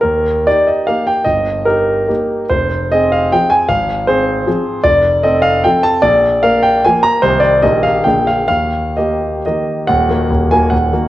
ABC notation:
X:1
M:3/4
L:1/8
Q:1/4=148
K:Eb
V:1 name="Grand piano"
B2 d e f g | e2 B4 | c2 e f g a | f2 c4 |
d2 e f g =a | d2 f g a b | c d e f g f | f2 e2 e2 |
[K:Ebm] g3 a g2 |]
V:2 name="Grand piano"
E,,2 [EG]2 [B,EG]2 | G,,,2 [EG]2 [B,EG]2 | F,,,2 [CA]2 [F,CA]2 | A,,,2 [CA]2 [F,CA]2 |
F,,,2 [C=A]2 [F,CA]2 | B,,,2 [B,B]2 [F,B,B]2 | [C,,E,EG]2 [B,,,E,B,G]2 [B,,,D,B,A]2 | E,,2 [B,G]2 [E,B,G]2 |
[K:Ebm] [E,,,E,,] [E,B,G] [E,,,E,,] [E,B,G] [E,,,E,,] [E,B,G] |]